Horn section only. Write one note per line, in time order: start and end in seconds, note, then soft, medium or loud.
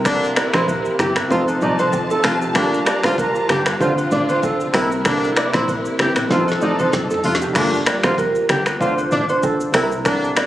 0.05 0.31 D3 loud
0.05 0.31 A#3 loud
0.05 0.31 D4 loud
0.54 0.65 C3 medium
0.54 0.65 A#3 medium
0.54 0.65 E4 loud
1.00 1.13 E3 medium
1.00 1.13 C4 medium
1.00 1.13 G4 medium
1.31 1.45 C3 medium
1.31 1.45 A3 medium
1.31 1.45 F4 loud
1.62 1.76 C3 medium
1.62 1.76 A3 medium
1.62 1.76 D#4 loud
2.24 2.38 C3 medium
2.24 2.38 A3 medium
2.24 2.38 F4 medium
2.56 2.81 A#2 loud
2.56 2.81 A3 loud
2.56 2.81 D4 loud
3.04 3.15 D3 medium
3.04 3.15 A#3 medium
3.04 3.15 F4 loud
3.49 3.63 D3 medium
3.49 3.63 A#3 medium
3.49 3.63 G4 medium
3.81 3.94 D3 medium
3.81 3.94 C4 medium
3.81 3.94 F4 medium
4.12 4.26 A2 medium
4.12 4.26 F3 medium
4.12 4.26 D4 loud
4.75 4.88 C3 medium
4.75 4.88 A#3 medium
4.75 4.88 E4 loud
5.06 5.31 D3 loud
5.06 5.31 A#3 loud
5.06 5.31 D4 loud
5.54 5.65 C3 medium
5.54 5.65 A#3 medium
5.54 5.65 E4 loud
5.99 6.13 E3 medium
5.99 6.13 C4 medium
5.99 6.13 G4 medium
6.31 6.44 C3 medium
6.31 6.44 A3 medium
6.31 6.44 F4 loud
6.62 6.76 C3 medium
6.62 6.76 A3 medium
6.62 6.76 D#4 loud
7.24 7.35 C3 medium
7.24 7.35 A3 medium
7.24 7.35 F4 medium
7.56 7.81 A#2 loud
7.56 7.81 A3 loud
7.56 7.81 D4 loud
8.04 8.15 D3 medium
8.04 8.15 A#3 medium
8.04 8.15 F4 loud
8.49 8.63 D3 medium
8.49 8.63 A#3 medium
8.49 8.63 G4 medium
8.80 8.94 D3 medium
8.80 8.94 C4 medium
8.80 8.94 F4 loud
9.12 9.26 A2 medium
9.12 9.26 F3 medium
9.12 9.26 D4 loud
9.74 9.88 C3 medium
9.74 9.88 A#3 medium
9.74 9.88 E4 loud
10.06 10.31 D3 loud
10.06 10.31 A#3 loud
10.06 10.31 D4 loud